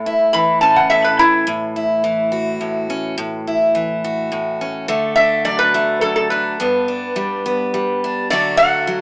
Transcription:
Already playing: steel-string acoustic guitar A2 A3
0.06 steel-string acoustic guitar E4
0.33 steel-string acoustic guitar E3, resonator guitar played with a steel bar B5
0.61 steel-string acoustic guitar C#4, resonator guitar played with a steel bar A5
0.76 resonator guitar played with a steel bar F#5
0.90 steel-string acoustic guitar A2 A4, resonator guitar played with a steel bar E5
1.04 resonator guitar played with a steel bar B4
1.19 resonator guitar played with a steel bar E4
1.47 steel-string acoustic guitar A2
1.76 steel-string acoustic guitar E4
2.04 steel-string acoustic guitar E3
2.32 steel-string acoustic guitar F#4
2.61 steel-string acoustic guitar A2
2.90 steel-string acoustic guitar C#4
3.18 steel-string acoustic guitar A2
3.47 steel-string acoustic guitar E4
3.75 steel-string acoustic guitar E3
4.04 steel-string acoustic guitar F#4
4.32 steel-string acoustic guitar A2
4.61 steel-string acoustic guitar C#4
4.88 steel-string acoustic guitar D3 A3
5.16 steel-string acoustic guitar D4, resonator guitar played with a steel bar E5
5.45 steel-string acoustic guitar F#3, resonator guitar played with a steel bar D5
5.59 resonator guitar played with a steel bar B4
5.74 steel-string acoustic guitar A3
6.01 steel-string acoustic guitar F#3, resonator guitar played with a steel bar A4
6.16 resonator guitar played with a steel bar A4
6.30 steel-string acoustic guitar D4, resonator guitar played with a steel bar B4
6.60 steel-string acoustic guitar G2 B3
6.88 steel-string acoustic guitar D4
7.16 steel-string acoustic guitar G3
7.46 steel-string acoustic guitar B3
7.74 steel-string acoustic guitar G3
8.04 steel-string acoustic guitar D4
8.30 steel-string acoustic guitar D3 F#3 A3 D4 F#4, resonator guitar played with a steel bar D5
8.57 steel-string acoustic guitar D4, resonator guitar played with a steel bar F#5
8.87 steel-string acoustic guitar F#3

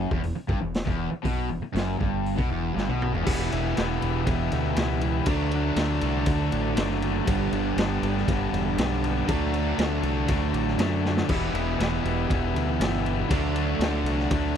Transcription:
Already playing: overdriven electric guitar F#2
0.11 fingered electric bass E1, overdriven electric guitar E2, kick
0.23 fingered electric bass E1, overdriven electric guitar E2, open hi-hat
0.36 muted distorted electric guitar stroke, muted overdriven electric guitar stroke
0.49 fingered electric bass G1, overdriven electric guitar G2, kick
0.60 fingered electric bass E1, overdriven electric guitar E2
0.74 snare, open hi-hat
0.85 fingered electric bass E1, overdriven electric guitar E2, kick
1.12 muted overdriven electric guitar stroke, muted fingered electric bass stroke, muted distorted electric guitar stroke
1.23 fingered electric bass B1, overdriven electric guitar B2, kick, open hi-hat
1.49 fingered electric bass E1, overdriven electric guitar E2
1.62 muted fingered electric bass stroke, muted distorted electric guitar stroke, muted overdriven electric guitar stroke
1.74 fingered electric bass F#1, overdriven electric guitar F#2, snare, open hi-hat
1.98 fingered electric bass G1, overdriven electric guitar G2, kick
2.26 open hi-hat
2.36 fingered electric bass B1, overdriven electric guitar B2, kick
2.48 fingered electric bass E1, overdriven electric guitar E2
2.74 fingered electric bass G1, overdriven electric guitar G2, snare
2.87 fingered electric bass B1, overdriven electric guitar B2, high tom
3.02 mid tom
3.12 fingered electric bass E1, overdriven electric guitar E2, floor tom
3.23 fingered electric bass E1, distorted electric guitar E2 B2, overdriven electric guitar E3 G3 B3 E4, tonewheel organ G4 E5, kick, crash
3.27 distorted electric guitar E3, tonewheel organ B3 E4
3.50 fingered electric bass E1, overdriven electric guitar G3 B3 E4, ride
3.76 fingered electric bass E1, overdriven electric guitar E3 G3 B3 E4, snare, ride
4.00 fingered electric bass E1, overdriven electric guitar G3 B3 E4, ride
4.24 fingered electric bass E1, overdriven electric guitar E3 G3 B3 E4, kick, ride
4.52 fingered electric bass D2, ride
4.75 fingered electric bass C#2, overdriven electric guitar E3 G3 B3 E4, snare, ride
5.01 overdriven electric guitar G3 B3 E4, ride
5.26 fingered electric bass D2, overdriven electric guitar D3 F#3 A3 D4, tonewheel organ A3 D4 F#4 D5, kick, ride
5.51 overdriven electric guitar F#3 A3 D4, ride
5.76 fingered electric bass D2, overdriven electric guitar D3 F#3 A3 D4, snare, ride
6.01 fingered electric bass C2, overdriven electric guitar F#3 A3 D4, ride
6.26 fingered electric bass D2, overdriven electric guitar D3 F#3 A3 D4, kick, ride
6.52 fingered electric bass A1, ride
6.76 fingered electric bass F#1, overdriven electric guitar D3 F#3 A3 D4, snare, ride
7.02 overdriven electric guitar F#3 A3 D4, ride
7.27 fingered electric bass G1, overdriven electric guitar G2 D3 G3 B3 D4, tonewheel organ B3 D4 G4 D5, kick, ride
7.52 fingered electric bass G1, overdriven electric guitar G3 B3 D4, ride
7.77 fingered electric bass G1, overdriven electric guitar D3 G3 B3 D4, snare, ride
8.02 fingered electric bass G1, overdriven electric guitar G3 B3 D4, ride
8.17 snare
8.28 fingered electric bass G1, overdriven electric guitar G2 D3 G3 B3 D4, kick, ride
8.53 fingered electric bass E1, ride
8.78 fingered electric bass B1, overdriven electric guitar D3 G3 B3 D4, snare, ride
9.02 overdriven electric guitar G3 B3 D4, ride
9.27 fingered electric bass D2, overdriven electric guitar D3 F#3 A3 D4, tonewheel organ A3 D4 F#4 D5, kick, ride
9.52 overdriven electric guitar F#3 A3 D4, ride
9.77 fingered electric bass D2, overdriven electric guitar D3 F#3 A3 D4, snare, ride
10.02 fingered electric bass C2, overdriven electric guitar F#3 A3 D4, ride
10.27 fingered electric bass D2, overdriven electric guitar D3 F#3 A3 D4, kick, ride
10.53 fingered electric bass A1, ride
10.67 snare
10.78 fingered electric bass F#2, overdriven electric guitar D3 F#3 A3 D4, snare, ride
11.04 overdriven electric guitar F#3 A3 D4, snare
11.17 snare
11.27 fingered electric bass E1, distorted electric guitar E2 B2, overdriven electric guitar E3 G3 B3 E4, tonewheel organ B3 E4 G4 E5, kick, crash
11.53 fingered electric bass E1, overdriven electric guitar G3 B3 E4, ride
11.78 fingered electric bass E1, overdriven electric guitar E3 G3 B3 E4, snare, ride
12.03 fingered electric bass E1, overdriven electric guitar G3 B3 E4, ride
12.29 fingered electric bass E1, overdriven electric guitar E3 G3 B3 E4, kick, ride
12.54 fingered electric bass D2, ride
12.80 fingered electric bass G1, overdriven electric guitar E3 G3 B3 E4, snare, ride
13.05 overdriven electric guitar G3 B3 E4, ride
13.29 fingered electric bass D2, overdriven electric guitar D3 F#3 A3 D4, tonewheel organ A3 D4 F#4 D5, kick, ride
13.54 overdriven electric guitar F#3 A3 D4, ride
13.79 fingered electric bass D2, overdriven electric guitar D3 F#3, snare, ride
13.83 overdriven electric guitar A3 D4
14.04 fingered electric bass C2, overdriven electric guitar A3 D4, ride
14.08 overdriven electric guitar F#3
14.19 snare
14.31 fingered electric bass D2, overdriven electric guitar D3 F#3 A3 D4, kick, ride

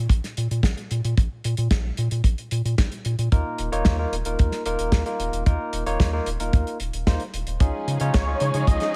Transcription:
0.09 analog synth bass A#1, kick, closed hi-hat
0.24 snare, closed hi-hat
0.37 analog synth bass A#2, closed hi-hat
0.51 analog synth bass A#2, closed hi-hat
0.63 analog synth bass A#1, kick, snare, closed hi-hat
0.77 closed hi-hat
0.91 analog synth bass A#2, closed hi-hat
1.05 analog synth bass A#2, closed hi-hat
1.18 analog synth bass A#1, kick, closed hi-hat
1.44 analog synth bass A#2, closed hi-hat
1.57 analog synth bass A#2, closed hi-hat
1.71 analog synth bass A#1, kick, snare, closed hi-hat
1.97 analog synth bass A#2, closed hi-hat
2.11 analog synth bass A#2, closed hi-hat
2.24 analog synth bass A#1, kick, closed hi-hat
2.38 closed hi-hat
2.51 analog synth bass A#2, closed hi-hat
2.65 analog synth bass A#2, closed hi-hat
2.78 analog synth bass A#1, kick, snare, closed hi-hat
2.92 closed hi-hat
3.05 analog synth bass A#2, closed hi-hat
3.19 analog synth bass A#2, closed hi-hat
3.32 analog synth bass D#2, tine electric piano A#3 D#4 F4 A#4, kick, closed hi-hat
3.58 analog synth bass D#1, closed hi-hat
3.72 analog synth bass D#1, tine electric piano A#3 D#4 F4 C#5, closed hi-hat
3.85 analog synth bass D#2, kick, snare, closed hi-hat
3.99 tine electric piano A#3 D#4 F4 A#4
4.12 analog synth bass D#1, closed hi-hat
4.25 analog synth bass D#1, tine electric piano A#3 D#4 F4 A#4, closed hi-hat
4.39 analog synth bass D#2, kick, closed hi-hat
4.52 snare, closed hi-hat
4.66 analog synth bass D#1, tine electric piano A#3 D#4 F4 A#4, closed hi-hat
4.79 analog synth bass D#1, closed hi-hat
4.92 analog synth bass D#2, kick, snare, closed hi-hat
5.06 tine electric piano A#3 D#4 F4 A#4, closed hi-hat
5.19 analog synth bass D#1, closed hi-hat
5.33 analog synth bass D#1, closed hi-hat
5.46 analog synth bass D#2, tine electric piano A#3 D#4 F4 A#4, kick, closed hi-hat
5.73 analog synth bass D#1, closed hi-hat
5.86 analog synth bass D#1, tine electric piano A#3 D#4 F4 C#5, closed hi-hat
6.00 analog synth bass D#2, kick, snare, closed hi-hat
6.13 tine electric piano A#3 D#4 F4 A#4
6.26 analog synth bass D#1, closed hi-hat
6.40 analog synth bass D#1, tine electric piano A#3 D#4 F4 A#4, closed hi-hat
6.53 analog synth bass D#2, kick, closed hi-hat
6.67 closed hi-hat
6.80 analog synth bass D#1, closed hi-hat
6.93 analog synth bass D#1, closed hi-hat
7.07 analog synth bass D#2, tine electric piano A#3 D#4 F4 C5, kick, snare, closed hi-hat
7.20 closed hi-hat
7.34 analog synth bass D#1, closed hi-hat
7.47 analog synth bass D#1, closed hi-hat
7.60 analog synth bass C#2, string section F3 G#3 C#4 D#4 G#4, tine electric piano C#4 D#4 F4 G#4, kick, closed hi-hat
7.88 analog synth bass C#3, closed hi-hat
8.00 analog synth bass C#3, tine electric piano C#4 D#4 F4 C#5, closed hi-hat
8.14 analog synth bass C#2, analog synth lead C#5, kick, snare, closed hi-hat
8.27 tine electric piano C#4 D#4 F4 G#4
8.40 analog synth bass C#3, analog synth lead C#5, closed hi-hat
8.54 analog synth bass C#3, tine electric piano C#4 D#4 F4 G#4, closed hi-hat
8.67 analog synth bass C#2, analog synth lead D#5, kick, closed hi-hat
8.80 snare, closed hi-hat

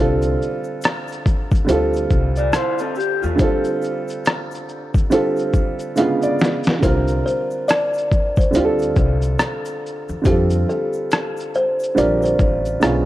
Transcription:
Already playing: upright bass C2, upright piano D3 G3 C4
0.00 upright piano F4 A4
0.22 shaker
0.42 shaker
0.64 shaker
0.82 closed hi-hat, shaker
0.84 cross-stick, shaker
1.08 shaker
1.12 shaker
1.26 kick, shaker
1.51 kick, shaker
1.55 shaker
1.65 upright piano D3 G3 C4, shaker
1.69 upright bass D2, upright piano F4 A4, closed hi-hat, shaker
1.93 shaker
1.96 shaker
2.10 upright bass C2, kick, shaker
2.36 clean electric guitar F4 D5, shaker
2.53 clean electric guitar E4 C5, cross-stick, closed hi-hat, shaker
2.78 clean electric guitar C4 A4, shaker
2.95 clean electric guitar G4, shaker
3.00 shaker
3.22 upright bass E2, clean electric guitar A3 F4, shaker
3.36 upright piano D3 G3 C4, kick, closed hi-hat, shaker
3.42 upright piano F4 A4
3.64 shaker
3.82 shaker
3.84 shaker
4.08 shaker
4.10 shaker
4.25 cross-stick, closed hi-hat, shaker
4.51 shaker
4.55 shaker
4.69 shaker
4.94 kick, shaker
4.98 shaker
5.10 upright piano D3 G3 C4 F4 A4, closed hi-hat, shaker
5.37 shaker
5.39 shaker
5.53 kick, shaker
5.79 shaker
5.96 upright piano C#3 D3 G#3 B3 F4 F5, closed hi-hat, shaker
6.22 upright piano D5, shaker
6.39 snare, shaker
6.44 shaker
6.64 shaker
6.67 snare, shaker
6.79 upright piano D3 G3 C4, kalimba A#4, kick, closed hi-hat, shaker
6.83 upright bass C2, upright piano F4 A#4
7.08 shaker
7.26 kalimba C5, shaker
7.51 shaker
7.68 kalimba D5, cross-stick, closed hi-hat, shaker
7.94 shaker
7.98 shaker
8.12 kick, shaker
8.36 kalimba C5, kick, shaker
8.41 shaker
8.51 upright piano D3 G3 C4, shaker
8.55 upright bass D2, upright piano F4 G4, closed hi-hat, shaker
8.65 upright piano A4
8.79 shaker
8.82 shaker
8.96 upright bass C2, kalimba A4, kick, shaker
9.22 shaker
9.39 cross-stick, closed hi-hat, shaker
9.65 shaker
9.86 shaker
10.09 upright bass E2, shaker
10.22 upright piano D3 G3, kick, shaker
10.26 upright bass F2, upright piano C4 F4 A4, kalimba G4, closed hi-hat, shaker
10.50 shaker
10.69 kalimba A4, shaker
10.93 shaker
11.11 cross-stick, closed hi-hat, shaker
11.37 shaker
11.40 shaker
11.54 kalimba C5, shaker
11.80 shaker
11.83 shaker
11.95 upright bass A#1, upright piano D3 G3 C4 F4 A#4, kalimba D5, closed hi-hat, shaker
12.22 kalimba C5, shaker
12.25 shaker
12.39 upright bass A1, kalimba A#4, kick, shaker
12.65 shaker
12.80 upright bass B1, upright piano D3 G#3 B3 C#4, cross-stick, closed hi-hat, shaker
12.83 upright piano F4, shaker

